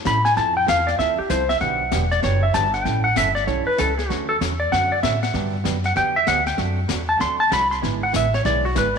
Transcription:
0.05 A2 E3 G3 C#4 E4 A4 B5, snare, hi-hat pedal
0.25 G#5, snare
0.36 F2 F3 C4 E4 A4 A5, brush sweep, snare
0.57 G5
0.66 E2 F3 C4 E4 A4 F5, snare, hi-hat pedal
0.87 D5, snare
0.98 D2 F3 C4 E4 A4 E5, brush sweep, snare
1.19 G4, muted upright bass stroke
1.29 C2 F3 C4 E4 A4 C5, snare, hi-hat pedal
1.49 E5, snare
1.60 B1 D3 F#3 B3 D4 G4 F#5, brush sweep, snare
1.92 E1 D3 F#3 B3 D4 G4, snare, hi-hat pedal
2.11 D5, snare
2.23 F#1 D3 F#3 B3 D4 G4 C#5, brush sweep, snare
2.43 E5
2.53 G1 D3 F#3 B3 D4 G4 A5, snare, hi-hat pedal
2.74 F#5, snare
2.84 A1 E3 G3 C#4 E4 A4 G5, brush sweep, snare
3.04 F#5
3.16 G1 E3 G3 C#4 E4 A4 E5, snare, hi-hat pedal
3.35 D5, snare
3.47 B1 E3 G3 C#4 E4 A4 C#5, brush sweep, snare
3.67 B4, muted upright bass stroke
3.78 C#2 E3 G3 C#4 E4 A4, snare, hi-hat pedal
3.98 G#4, snare
4.09 D2 D3 F#3 A3 C#4 F#4, brush sweep, snare
4.29 A4
4.40 E2 D3 F#3 A3 C#4 F#4, snare, hi-hat pedal
4.60 D5
4.71 F#2 D3 F#3 A3 C#4 F#4 F#5, brush sweep, snare
4.92 D5
5.03 A2 D3 F#3 A3 C#4 F#4 E5, snare, hi-hat pedal
5.23 F#5, snare
5.34 G2 D3 F#3 B3 D4 G4, brush sweep, snare
5.64 F#2 D3 F#3 B3 D4 G4, snare, hi-hat pedal
5.84 F#5, snare
5.96 E2 D3 F#3 B3 D4 G4 G5, brush sweep, snare
6.16 E5
6.27 D2 D3 F#3 B3 D4 G4 F#5, snare, hi-hat pedal
6.46 G5, snare
6.57 F#2 C3 F#3 A3 D4 F#4, brush sweep, snare
6.88 E2 C3 F#3 A3 D4 F#4, snare, hi-hat pedal
7.09 A5
7.19 D2 C3 F#3 A3 D4 F#4 C6, brush sweep, snare
7.40 A5
7.50 C2 C3 F#3 A3 D4 F#4 B5, snare, hi-hat pedal
7.71 C6, snare
7.82 G#1 D3 G#3 B3 E4 G#4, brush sweep, snare
8.03 F#5
8.13 A1 D3 G#3 B3 E4 G#4 E5, snare, hi-hat pedal
8.34 C#5, snare
8.45 B1 D3 G#3 B3 E4 G#4 D5, brush sweep, snare
8.65 F#4
8.75 G#1 D3 G#3 B3 E4 G#4 B4, snare, hi-hat pedal

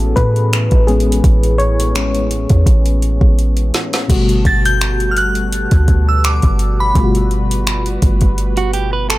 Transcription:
Already playing: A1 A2 E3 G#3 B3 C#4 F#4 G#4 A4
0.00 closed hi-hat
0.16 A2 B4, kick, closed hi-hat
0.36 closed hi-hat
0.53 finger snap, closed hi-hat
0.71 A1, kick, closed hi-hat
0.87 G#3 B3 C#4 G#4, closed hi-hat
1.00 closed hi-hat
1.12 closed hi-hat
1.24 A1, kick, closed hi-hat
1.43 closed hi-hat
1.58 C#5, closed hi-hat
1.80 closed hi-hat
1.95 G#3 B3 C#4, finger snap, closed hi-hat
2.15 closed hi-hat
2.31 closed hi-hat
2.49 E2, kick, closed hi-hat
2.66 A1, kick, closed hi-hat
2.86 closed hi-hat
3.02 closed hi-hat
3.21 A1, kick
3.39 closed hi-hat
3.57 closed hi-hat
3.74 snare, closed hi-hat
3.93 snare, closed hi-hat
4.08 G1 B2 G3 A3 B3 F#4 A4, kick, closed hi-hat, crash
4.29 closed hi-hat
4.45 G1 A6, kick, closed hi-hat
4.65 G6, closed hi-hat
4.81 finger snap, closed hi-hat
5.00 closed hi-hat
5.11 F6
5.17 F#6, closed hi-hat
5.35 closed hi-hat
5.52 closed hi-hat
5.71 D2, kick, closed hi-hat
5.88 kick, closed hi-hat
6.09 E6
6.24 D6, finger snap, closed hi-hat
6.42 G1, kick, closed hi-hat
6.59 closed hi-hat
6.80 B5
6.94 G1 B2 G3 A3 F4 B4, kick, closed hi-hat
7.04 F#4
7.15 closed hi-hat
7.31 closed hi-hat
7.51 closed hi-hat
7.67 finger snap, closed hi-hat
7.86 closed hi-hat
8.02 G1, kick, closed hi-hat
8.21 kick, closed hi-hat
8.38 closed hi-hat
8.57 F#4, closed hi-hat
8.73 G4, closed hi-hat
8.93 B4
9.10 A4, finger snap, closed hi-hat

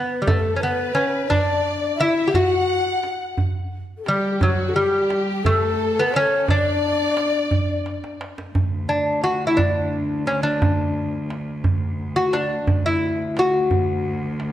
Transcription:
Already playing: B3 B4
0.22 G3 A4
0.27 A3 A4 B4, tombak dum
0.40 A4
0.56 C#4 B4
0.63 B3 B4
0.95 C#4, tombak tek
1.29 D4 D5, tombak dum
1.33 D5
1.96 E5
2.00 E4 D5 E5, tombak tek
2.09 E5
2.27 G4 F#5
2.34 F#4 F#5, tombak dum
2.38 E5
2.48 F#5
3.03 tombak tek
3.38 tombak dum
3.98 A4
4.05 G3 G4, tombak tek
4.41 F#3 F#4, tombak dum
4.69 A4
4.75 G3 G4
5.10 tombak tek
5.27 G4
5.44 A3 A4, tombak dum
5.99 B3
6.14 C#4 C#5, tombak tek
6.47 D4 D5, tombak dum
7.17 tombak tek
7.51 tombak dum
7.86 tombak tek
8.04 tombak ka
8.21 tombak tek
8.38 tombak ka
8.54 D2, tombak dum
8.89 D4
9.24 F#4, tombak tek
9.47 E4
9.57 D4, tombak dum
9.93 tombak ka
10.27 C#4, tombak tek
10.43 D4
10.62 tombak dum
11.30 tombak tek
11.64 tombak dum
11.99 tombak ka
12.16 F#4
12.33 D4, tombak tek
12.67 D2, tombak dum
12.86 E4
13.37 F#4, tombak tek
13.71 tombak dum
14.04 tombak ka
14.40 tombak tek

